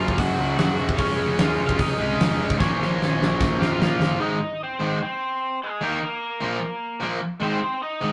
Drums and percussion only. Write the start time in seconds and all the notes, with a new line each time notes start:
0.08 kick
0.18 kick, open hi-hat
0.58 snare, open hi-hat
0.89 kick
0.98 kick, open hi-hat
1.38 snare, open hi-hat
1.69 kick
1.79 kick, open hi-hat
2.20 snare, open hi-hat
2.50 kick
2.60 kick, snare
2.82 snare
3.02 snare
3.22 snare
3.41 kick, snare
3.62 snare
3.82 snare
4.02 snare